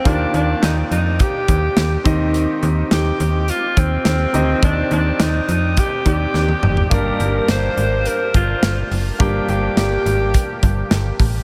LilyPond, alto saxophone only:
\new Staff \with { instrumentName = "Alto saxophone" } { \time 4/4 \key c \minor \tempo 4 = 105 d'8 d'8 ees'8 ees'8 g'4. r8 | r4 g'4 f'8 c'4. | d'8 d'8 ees'8 ees'8 g'8 g'4. | bes'4 c''4 bes'8 f'4 r8 |
g'8 g'8 g'4. r4. | }